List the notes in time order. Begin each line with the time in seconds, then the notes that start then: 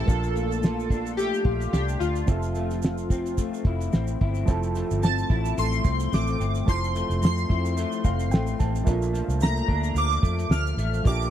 Already playing: F3 A3 C4 A4
0.05 A#1 A#2 F3 A#3 D4 F4, kick, closed hi-hat
0.09 A4, shaker
0.23 shaker
0.35 A3, closed hi-hat, shaker
0.50 closed hi-hat, shaker
0.63 F4, snare, shaker
0.80 shaker
0.90 D4, kick, closed hi-hat, shaker
1.05 closed hi-hat, shaker
1.17 A3 G4, closed hi-hat, shaker
1.34 shaker
1.45 A#1 F4, kick, closed hi-hat
1.60 closed hi-hat, shaker
1.73 C2 D4 G4, snare, shaker
1.89 shaker
1.99 D2 F4, closed hi-hat, shaker
2.16 closed hi-hat, shaker
2.26 F1 F3 C4 E5, kick, closed hi-hat, shaker
2.31 A4
2.42 shaker
2.55 A3, closed hi-hat, shaker
2.71 snare, closed hi-hat, shaker
2.82 snare, shaker
2.98 shaker
3.10 C4, kick, closed hi-hat, shaker
3.26 closed hi-hat, shaker
3.38 A3, kick, closed hi-hat, shaker
3.54 shaker
3.65 F1 E4, kick, closed hi-hat
3.80 closed hi-hat, shaker
3.93 A1 C4, snare, shaker
4.07 shaker
4.21 G1 E4, kick, closed hi-hat
4.35 closed hi-hat, shaker
4.45 F1 F3 A3 C4 E4, kick, closed hi-hat, shaker
4.50 A4
4.63 closed hi-hat, shaker
4.75 A3, closed hi-hat, shaker
4.91 G1, closed hi-hat, shaker
5.02 C4 A5, snare, shaker
5.18 shaker
5.30 A1 E4, kick, closed hi-hat
5.45 closed hi-hat, shaker
5.58 A1 A3 C6, closed hi-hat, shaker
5.73 shaker
5.84 C2 C4, kick, closed hi-hat, shaker
6.00 closed hi-hat, shaker
6.12 A1 A3 D6, snare, shaker
6.27 closed hi-hat, shaker
6.40 G1 C4, closed hi-hat, shaker
6.55 closed hi-hat, shaker
6.65 F1 F3 A3 C4 E4 C6, kick, closed hi-hat, shaker
6.70 C5
6.84 shaker
6.95 A3, closed hi-hat, shaker
7.10 F1, closed hi-hat, shaker
7.22 F2 C4 C6, snare, shaker
7.38 shaker
7.49 F2 E4, kick, closed hi-hat
7.65 closed hi-hat, shaker
7.77 A3, closed hi-hat, shaker
7.92 shaker
8.04 F1 C4 F5, kick, closed hi-hat, shaker
8.20 closed hi-hat, shaker
8.31 A1 A3 G5, snare, shaker
8.47 shaker
8.59 A1 C4 A5, kick, closed hi-hat, shaker
8.75 closed hi-hat, shaker
8.84 A#1 A#2 F3 A3 A#3 D4, kick, closed hi-hat, shaker
8.88 F4
9.02 closed hi-hat, shaker
9.13 F3, closed hi-hat, shaker
9.28 C2, closed hi-hat, shaker
9.40 A3 A#5, snare, shaker
9.57 shaker
9.68 D2 D4, kick, closed hi-hat
9.84 closed hi-hat, shaker
9.95 D2 F3 D6, closed hi-hat, shaker
10.11 closed hi-hat, shaker
10.22 F2 A3, kick, closed hi-hat, shaker
10.39 closed hi-hat, shaker
10.50 D2 F3 F6, snare, shaker
10.67 shaker
10.77 A1 A3, closed hi-hat, shaker
10.93 closed hi-hat, shaker
11.03 A#1 A#2 F3 A3 A#3 D4, kick, closed hi-hat, shaker
11.07 G4 D6
11.20 closed hi-hat, shaker